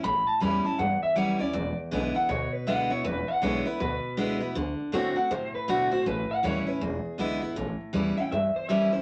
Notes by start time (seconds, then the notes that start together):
0.04 A1 A2 B5
0.27 A5, muted upright bass stroke
0.40 E2 E3 G3 C#4 E4 B5
0.65 C#4 E4 A5
0.79 E2 G2 F#5
1.03 E5, muted upright bass stroke
1.16 F#2 E3 G3 C#4 E4 F#5
1.39 D#2 C#4 E4 D5
1.53 E1 E2
1.78 muted upright bass stroke
1.91 B1 D3 G#3 B3 E4
2.15 B3 E4 F#5, muted upright bass stroke
2.29 D2 B2 C#5
2.53 B4, muted upright bass stroke
2.67 C#2 D3 G#3 B3 E4 F#5
2.90 D2 B3 E4 C#5
3.04 E1 E2 B4
3.28 F#5, muted upright bass stroke
3.42 B1 D3 G#3 B3 E4 C#5
3.65 B3 E4 B4
3.80 D2 B2 B4
4.04 muted upright bass stroke
4.17 C#2 D3 G#3 B3 E4
4.40 E2 B3 E4
4.55 D2 D3
4.80 muted upright bass stroke
4.92 A2 D3 A3 C4 F#4
5.16 C4 F#4 F#5, muted upright bass stroke
5.31 A2 C3 C5
5.55 B4, muted upright bass stroke
5.68 B2 D3 A3 C4 F#4 F#5
5.91 B1 C4 F#4 C5
6.06 A1 A2 B4
6.30 F#5, muted upright bass stroke
6.43 D#2 E3 G3 C#4 E4 C#5
6.67 C#4 E4 B4, muted upright bass stroke
6.81 E1 E2 G#4
7.05 muted upright bass stroke
7.18 C#2 D3 G#3 B3 E4
7.42 G#1 B3 E4
7.56 A1 A2
7.81 muted upright bass stroke
7.93 E2 E3 G3 C#4 E4
8.17 C#4 E4 G5, muted upright bass stroke
8.32 E2 G2 E5
8.56 C5, muted upright bass stroke
8.69 F#2 E3 G3 C#4 E4 E5
8.93 C#2 C#4 E4 C5